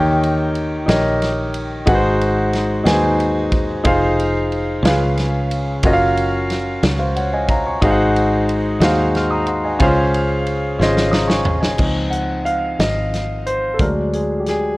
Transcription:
Already playing: fingered electric bass D#2, grand piano D#3 D#4 G4 A#4 C#5 G5
0.23 ride
0.55 ride
0.86 fingered electric bass A#1, grand piano D#4 G4 A#4 C#5 D#5, snare, ride
1.22 snare, ride
1.54 ride
1.86 fingered electric bass G#1, grand piano G#2 D#4 F#4 G#4 B4 F#5, kick, ride
1.95 grand piano C5
2.21 ride
2.53 snare, ride
2.84 fingered electric bass D#2, grand piano D#4 F#4 G#4 B4 G#5, snare, ride
2.92 grand piano C5
3.20 ride
3.52 kick, ride
3.84 fingered electric bass F1, grand piano D#4 F4 G#4 C5 F5, kick, ride
4.20 ride
4.52 ride
4.83 fingered electric bass C#2, grand piano C#3 C#4 F4 G#4 B4 F5, snare, ride
5.18 snare, ride
5.51 ride
5.83 fingered electric bass F#1, grand piano C#4 F4 F#4 A#4 D#5, kick, ride
5.93 grand piano F5
6.17 ride
6.50 snare, ride
6.83 fingered electric bass C#2, snare, ride
6.99 grand piano C5 F5
7.16 grand piano C#5 F#5, ride
7.33 grand piano D#5 G#5
7.49 grand piano F5 A#5, kick, ride
7.67 grand piano G#5 C#6
7.82 fingered electric bass G#1, grand piano G#2 D#4 F#4 G#4 C5 F5, kick, ride
7.91 grand piano F#5
8.16 ride
8.49 ride
8.80 fingered electric bass D#2, grand piano D#4 F#4 G#4 C5 F5, snare, ride
9.15 grand piano C6 F6, snare, ride
9.31 grand piano A#5 D#6
9.46 grand piano F#5 C6, ride
9.64 grand piano D#5 G#5
9.79 fingered electric bass C#2, grand piano C#3 C#4 F4 G#4 C5 F5, kick, ride
10.14 ride
10.46 ride
10.79 fingered electric bass G#1, grand piano C#4 F4 G#4 C5 D#5, snare
10.97 snare
11.11 grand piano A#5 D#6, snare
11.28 grand piano G#5 C#6, snare
11.45 floor tom
11.61 grand piano D#5 G#5, snare
11.77 fingered electric bass C#2, grand piano F3 C4 D#4, kick, crash
12.10 grand piano F#5, closed hi-hat
12.45 grand piano F5, closed hi-hat
12.79 fingered electric bass G#1, grand piano D#5, snare, closed hi-hat
13.14 snare, closed hi-hat
13.46 grand piano C5, closed hi-hat
13.74 grand piano A4
13.79 fingered electric bass D2, grand piano F#3 G#3 D4 A#4, kick, closed hi-hat
14.13 grand piano G#4, closed hi-hat
14.40 grand piano G4
14.46 grand piano G#4, snare, closed hi-hat

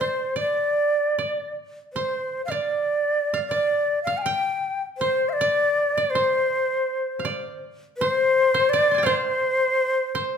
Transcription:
Already playing: koto D5
0.00 shakuhachi C5, koto C5
0.36 koto D5, shakuhachi D5
1.19 koto D5
1.93 shakuhachi C5, koto C5
2.45 shakuhachi F5, koto F5
2.51 shakuhachi D5, koto D5
3.34 koto F5
3.48 shakuhachi D5, koto D5
4.04 shakuhachi F5, koto F5
4.18 shakuhachi G#5
4.22 shakuhachi G5, koto G5
4.98 shakuhachi C5, koto C5
5.29 shakuhachi D5 F5
5.41 koto D5
5.98 koto D5
6.10 shakuhachi C5
6.15 koto C5
7.19 koto F5
7.25 koto D5
7.97 shakuhachi C5, koto C5
8.54 koto C5
8.69 shakuhachi D5, koto D5
8.91 koto G#5 C6
8.98 koto G5
9.03 shakuhachi C5, koto C5 D5 F5
10.15 koto C5

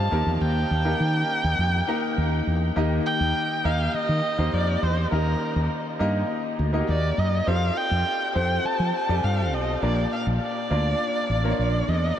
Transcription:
Already playing: grand piano C4 F4 G4 A4 A#4 C5, erhu A5
0.11 fretless electric bass D#2, grand piano D#3 A#3 D#4 G4 A#4
0.26 fretless electric bass E2
0.41 fretless electric bass D#2, erhu G5
0.71 fretless electric bass D#2
0.85 grand piano A#3 D#4 G4 A#4
1.00 fretless electric bass D#3
1.44 fretless electric bass D#2
1.58 fretless electric bass F2
1.87 grand piano A#3 D#4 G4 A#4
2.18 fretless electric bass D#2
2.47 fretless electric bass E2
2.76 fretless electric bass D#2, grand piano D#3 A#3 D#4 G4 A#4 D#5
3.06 erhu G5
3.20 fretless electric bass D#2
3.64 fretless electric bass D#2, grand piano A#3 D#4 G4 A#4 D#5, erhu F5
3.94 erhu D#5, muted fretless electric bass stroke
4.09 fretless electric bass D#3
4.38 fretless electric bass D#2, grand piano A#3 D#4 G4 A#4 C5
4.53 fretless electric bass F2, erhu D5
4.82 fretless electric bass E2, erhu C5
5.11 fretless electric bass D#2, grand piano D#3 A#3 D#4 G4 A#4 D#5, erhu A#4
5.56 fretless electric bass D#2
5.99 fretless electric bass G2, grand piano A#3 D#4 G4 A#4 D#5
6.59 fretless electric bass D2
6.73 grand piano A#3 D#4 F#4 A#4 D#5
6.80 grand piano G4
6.88 fretless electric bass D#2, erhu D5
7.18 fretless electric bass F#2, erhu D#5
7.46 fretless electric bass F2, grand piano C4 F4 G4 A4 C5, erhu F5
7.77 erhu G5
7.91 fretless electric bass F2
8.35 fretless electric bass F2, grand piano C4 F4 G4 A4 C5, erhu G5
8.65 erhu A5, muted fretless electric bass stroke
8.79 fretless electric bass F3
8.95 erhu A5
9.08 fretless electric bass F2, grand piano C4 F4 G4 A4 D5
9.24 fretless electric bass G2, erhu F5
9.53 fretless electric bass B1, erhu D#5
9.82 fretless electric bass A#1, grand piano A#2 A#3 D4 F4 A#4 D5, erhu D5
10.12 erhu F5
10.26 fretless electric bass A#1
10.42 erhu D5
10.70 fretless electric bass D2, grand piano A#3 D4 F4 A#4 D5
11.29 fretless electric bass A1
11.44 grand piano A#3 D4 F4 A#4 C#5
11.51 grand piano D5
11.59 fretless electric bass A#1, erhu D5
11.88 fretless electric bass E2, erhu D#5

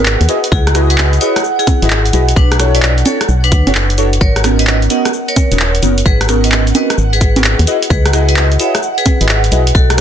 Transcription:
Already playing: fm bass G#1, vibraphone G#4 B4, ambient pad F#5
0.06 clap, cabasa
0.21 fm bass D#2, closed hi-hat, cabasa
0.29 synth stab E4 F#4 G#4 B4 D#5, closed hi-hat, cabasa
0.44 closed hi-hat, cabasa
0.52 fm bass C#2, vibraphone E4 G#4, kick, cabasa
0.67 cross-stick, closed hi-hat, cabasa
0.75 synth stab E4 F#4 G#4 B4 D#5, cross-stick, closed hi-hat, cabasa
0.90 vibraphone G#4 B4, closed hi-hat, cabasa
0.98 clap, cabasa
1.13 closed hi-hat, cabasa
1.21 vibraphone E4 C#5, synth stab E4 F#4 G#4 B4 D#5, closed hi-hat, cabasa
1.36 cross-stick, closed hi-hat, cabasa
1.44 cabasa
1.59 vibraphone E4 G#4, closed hi-hat, cabasa
1.67 kick, closed hi-hat, high conga, cabasa
1.82 fm bass G#1, synth stab E4 F#4 G#4 B4 D#5, closed hi-hat, cabasa
1.90 clap, cabasa
2.06 closed hi-hat, cabasa
2.13 fm bass B1, synth stab E4 F#4 G#4 B4 D#5, closed hi-hat, cabasa
2.29 closed hi-hat, cabasa
2.36 fm bass B1, vibraphone D4 B4, kick, cabasa
2.52 cross-stick, closed hi-hat, cabasa
2.59 synth stab D4 E4 F#4 A4 C#5, cross-stick, closed hi-hat, cabasa
2.75 vibraphone B4 D5, closed hi-hat, cabasa
2.83 clap, cabasa
2.98 closed hi-hat, cabasa
3.05 synth stab D4 E4 F#4 A4 C#5, vibraphone A4 C#5, closed hi-hat, high conga, cabasa
3.21 cross-stick, closed hi-hat, cabasa
3.29 fm bass B1, cabasa
3.44 vibraphone D4 B4, closed hi-hat, cabasa
3.52 fm bass D2, kick, closed hi-hat, cabasa
3.67 fm bass F#1, synth stab D4 E4 F#4 A4 C#5, closed hi-hat, high conga, cabasa
3.75 clap, cabasa
3.90 closed hi-hat, cabasa
3.98 synth stab D4 E4 F#4 A4 C#5, closed hi-hat, cabasa
4.13 closed hi-hat, cabasa
4.21 fm bass G#1, vibraphone A#4 C#5, ambient pad F#5, kick, cabasa
4.36 cross-stick, closed hi-hat, cabasa
4.44 synth stab B3 C#4 D#4 F#4 A#4, cross-stick, closed hi-hat, cabasa
4.59 vibraphone B4 D#5, closed hi-hat, cabasa
4.67 clap, cabasa
4.82 closed hi-hat, cabasa
4.90 synth stab B3 C#4 D#4 F#4 A#4, vibraphone D#5 F#5, closed hi-hat, cabasa
5.05 cross-stick, closed hi-hat, cabasa
5.13 cabasa
5.28 vibraphone A#4 C#5, closed hi-hat, cabasa
5.36 kick, closed hi-hat, high conga, cabasa
5.52 fm bass D#1, synth stab B3 C#4 D#4 F#4 A#4, closed hi-hat, cabasa
5.59 clap, cabasa
5.75 closed hi-hat, cabasa
5.83 fm bass F#1, synth stab B3 C#4 D#4 F#4 A#4, closed hi-hat, cabasa
5.98 closed hi-hat, cabasa
6.06 fm bass G#1, vibraphone G#4 B4, kick, cabasa
6.21 cross-stick, closed hi-hat, cabasa
6.29 synth stab B3 C#4 D#4 F#4 A#4, cross-stick, closed hi-hat, cabasa
6.44 vibraphone B4 D#5, closed hi-hat, cabasa
6.52 clap, cabasa
6.67 closed hi-hat, cabasa
6.75 synth stab B3 C#4 D#4 F#4 A#4, vibraphone B4 D#5, closed hi-hat, high conga, cabasa
6.90 cross-stick, closed hi-hat, cabasa
6.98 fm bass G#1, cabasa
7.13 vibraphone G#4 B4, closed hi-hat, cabasa
7.21 kick, closed hi-hat, cabasa
7.36 synth stab B3 C#4 D#4 F#4 A#4, closed hi-hat, high conga, cabasa
7.44 clap, cabasa
7.59 fm bass D#2, closed hi-hat, cabasa
7.67 synth stab E4 F#4 G#4 B4 D#5, closed hi-hat, cabasa
7.82 closed hi-hat, cabasa
7.90 fm bass C#2, vibraphone G#4 B4, kick, cabasa
8.06 cross-stick, closed hi-hat, cabasa
8.13 synth stab E4 F#4 G#4 B4 D#5, cross-stick, closed hi-hat, cabasa
8.29 vibraphone B4 D#5, closed hi-hat, cabasa
8.37 clap, cabasa
8.52 closed hi-hat, cabasa
8.60 synth stab E4 F#4 G#4 B4 D#5, vibraphone C#5 E5, closed hi-hat, cabasa
8.75 cross-stick, closed hi-hat, cabasa
8.83 cabasa
8.98 vibraphone G#4 B4, closed hi-hat, cabasa
9.06 kick, closed hi-hat, high conga, cabasa
9.21 fm bass G#1, synth stab E4 F#4 G#4 B4 D#5, closed hi-hat, cabasa
9.29 clap, cabasa
9.44 closed hi-hat, cabasa
9.52 fm bass B1, synth stab E4 F#4 G#4 B4 D#5, closed hi-hat, cabasa
9.67 closed hi-hat, cabasa
9.75 fm bass B1, vibraphone F#4 A4, kick, cabasa
9.90 cross-stick, closed hi-hat, cabasa

